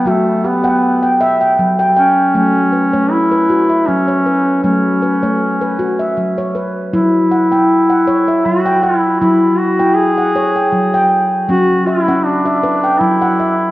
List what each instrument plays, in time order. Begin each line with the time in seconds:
Already playing: handpan G5
0.05 handpan F#3 F#4, duduk A3
0.44 duduk B3, handpan G4
0.64 handpan F#5 G5
1.03 handpan G5
1.21 handpan E5
1.41 handpan G5
1.59 handpan F#3
1.79 handpan G5
1.96 duduk C#4, handpan G5
2.35 handpan F#3 A3, duduk C#4
2.73 handpan B4
2.93 handpan A3 C#5
3.12 duduk E4
3.32 handpan B4
3.50 handpan F#4
3.70 handpan E5
3.88 handpan F#3, duduk C#4
4.08 handpan C#5
4.26 handpan B4
4.63 handpan F#3 A3, duduk C#4
5.02 handpan B4
5.23 handpan A3 C#5
5.62 handpan B4
5.79 handpan F#4
5.99 handpan E5
6.17 handpan F#3
6.38 handpan C#5
6.55 handpan B4
6.93 handpan F#3 E4, duduk E4
7.31 handpan F#5
7.51 handpan E4 G5
7.89 handpan F#5
8.07 handpan C#5
8.28 handpan E5
8.45 handpan F#3, duduk F#4
8.65 handpan G5
8.83 duduk E4, handpan F#5
9.20 handpan F#3 E4, duduk E4
9.58 duduk F#4
9.80 handpan E4 G5
9.95 duduk G#4
10.18 handpan F#5
10.36 handpan C#5
10.56 handpan G5
10.72 handpan F#3
10.94 handpan G5
11.49 handpan F#3 C#4, duduk F#4
11.87 duduk E4, handpan E5
12.08 handpan C#4 F#5
12.25 duduk D4
12.45 handpan E5
12.63 handpan B4
12.84 handpan G5
13.01 handpan F#3, duduk E4
13.22 handpan F#5
13.40 handpan E5